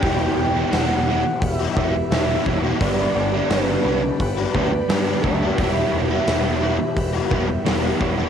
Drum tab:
HH |o-o-o-o-|o-o-o-o-|o-o-o-o-|
SD |--o---o-|--o---o-|--o---o-|
BD |o---oo-o|o---oo-o|o---oo-o|